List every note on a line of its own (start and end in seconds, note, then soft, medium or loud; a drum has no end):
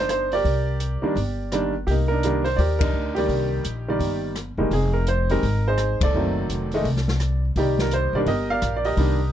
0.00 0.41 G1 medium
0.00 0.30 D4 medium
0.00 0.30 D#4 medium
0.09 0.33 C5 medium
0.09 cross-stick medium
0.09 closed hi-hat soft
0.32 1.72 G4 medium
0.32 1.71 A#4 medium
0.32 1.71 D5 loud
0.32 open hi-hat soft
0.44 0.99 C2 medium
0.44 kick soft
0.44 open hi-hat soft
0.80 closed hi-hat medium
1.02 1.14 D#3 medium
1.02 1.15 G3 medium
1.02 1.15 A#3 medium
1.02 1.15 D4 medium
1.02 muted upright bass stroke soft
1.16 1.83 G1 medium
1.16 kick soft
1.16 open hi-hat soft
1.52 1.72 D#3 medium
1.52 1.72 G3 medium
1.52 1.72 A#3 medium
1.52 1.73 D4 medium
1.52 cross-stick medium
1.52 closed hi-hat soft
1.87 2.55 C2 medium
1.87 2.23 A#3 medium
1.87 1.92 G4 medium
1.87 kick soft
1.87 open hi-hat soft
1.91 2.10 D#4 medium
2.08 2.23 D4 medium
2.08 2.78 D#4 medium
2.08 2.45 A#4 medium
2.23 2.44 D#3 medium
2.23 2.44 G3 medium
2.23 2.44 A#3 medium
2.23 2.44 D4 medium
2.23 closed hi-hat medium
2.44 2.58 C5 medium
2.44 open hi-hat soft
2.56 2.91 D#2 medium
2.56 3.13 G4 medium
2.56 2.77 A#4 medium
2.56 2.78 D5 medium
2.56 kick soft
2.56 open hi-hat soft
2.79 3.48 D4 medium
2.79 3.17 D#4 medium
2.79 3.13 A#4 medium
2.79 kick medium
2.79 ride medium
2.93 3.27 D2 medium
3.15 3.62 D#3 medium
3.15 3.63 G3 medium
3.15 3.63 A#3 medium
3.15 4.20 D#4 soft
3.15 4.18 G4 medium
3.15 3.63 D5 medium
3.15 open hi-hat soft
3.29 3.62 C2 medium
3.29 kick soft
3.29 open hi-hat soft
3.65 3.98 A#1 medium
3.65 closed hi-hat medium
3.88 4.34 D#3 medium
3.88 4.34 G3 medium
3.88 4.34 A#3 medium
3.88 4.35 D5 medium
3.99 4.54 G1 medium
3.99 kick soft
3.99 open hi-hat soft
4.36 cross-stick medium
4.36 closed hi-hat soft
4.57 4.70 E1 medium
4.57 4.70 D#3 medium
4.57 4.70 G3 medium
4.57 4.70 G#3 medium
4.57 4.71 A#3 medium
4.71 5.39 F1 medium
4.71 5.30 D#4 soft
4.71 4.95 G#4 medium
4.71 kick soft
4.71 open hi-hat soft
4.75 5.30 C4 soft
4.93 5.06 A#4 medium
5.07 5.31 C5 medium
5.07 closed hi-hat medium
5.30 5.42 D#3 medium
5.30 5.42 G3 medium
5.30 5.42 G#3 medium
5.30 5.42 C4 medium
5.30 5.67 D#4 medium
5.30 5.67 A#4 medium
5.30 open hi-hat soft
5.43 5.97 G#1 medium
5.43 kick soft
5.43 open hi-hat soft
5.68 6.12 D#4 medium
5.68 6.12 G#4 medium
5.68 6.03 C5 medium
5.78 cross-stick medium
5.78 closed hi-hat soft
6.01 6.13 F1 medium
6.01 7.41 A4 medium
6.01 7.40 D5 medium
6.01 kick medium
6.01 ride medium
6.14 6.47 F#1 medium
6.14 6.68 D#3 medium
6.14 6.68 F#3 medium
6.14 6.68 A3 soft
6.14 6.69 C4 medium
6.49 6.83 F1 medium
6.49 closed hi-hat medium
6.72 6.85 D#3 medium
6.72 6.85 G#3 medium
6.72 6.85 A3 medium
6.72 6.85 D#4 medium
6.72 open hi-hat soft
6.84 7.52 C2 medium
6.84 kick soft
6.84 open hi-hat soft
6.96 snare soft
7.08 snare soft
7.20 cross-stick medium
7.20 closed hi-hat soft
7.56 8.10 C2 medium
7.56 8.11 D#3 medium
7.56 8.11 G3 medium
7.56 8.15 A#3 medium
7.56 8.24 D#4 medium
7.56 7.78 G4 medium
7.56 8.11 D5 medium
7.56 kick soft
7.56 open hi-hat soft
7.79 7.94 A#4 medium
7.79 snare soft
7.91 8.13 C5 medium
7.91 closed hi-hat medium
8.13 8.26 B1 medium
8.13 8.27 D#3 medium
8.13 8.27 G3 medium
8.13 8.27 A#3 medium
8.13 8.20 D5 medium
8.17 8.28 D4 medium
8.26 8.60 G1 medium
8.26 8.84 G4 medium
8.26 8.50 A#4 medium
8.26 8.51 D#5 medium
8.26 kick soft
8.26 open hi-hat soft
8.50 8.84 A#4 medium
8.50 8.75 D5 medium
8.50 8.75 F5 loud
8.62 8.96 A#1 medium
8.62 cross-stick medium
8.62 closed hi-hat medium
8.76 8.85 D5 medium
8.85 9.32 G4 medium
8.85 9.32 A#4 medium
8.85 9.32 D#5 medium
8.85 open hi-hat soft
8.97 9.32 C2 medium
8.97 9.18 D#3 medium
8.97 9.18 G3 medium
8.97 9.19 A#3 medium
8.97 9.19 D4 medium
8.97 kick soft
8.97 open hi-hat soft